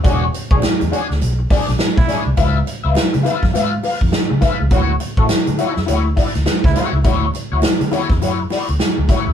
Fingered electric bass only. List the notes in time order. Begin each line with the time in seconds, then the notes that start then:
0.05 E1
0.51 B1
0.64 muted fingered electric bass stroke
0.82 E2
1.10 D2
1.22 B1
1.69 B1
1.98 B1
2.26 C2
2.38 C#2
2.85 C#2
2.97 muted fingered electric bass stroke
3.14 C#3
3.43 F#2
3.55 G#2
4.02 F2
4.31 C#3
4.61 C#2
4.71 D2
5.17 A2
5.31 muted fingered electric bass stroke
5.48 D3
5.77 F#2
5.89 D2
6.36 D2
6.47 muted fingered electric bass stroke
6.65 C#2
6.93 C#2
7.05 D2
7.52 D2
7.63 muted fingered electric bass stroke
7.81 D3
8.10 E2
8.22 F#2
8.69 D2
8.81 muted fingered electric bass stroke
8.98 D2
9.27 D#2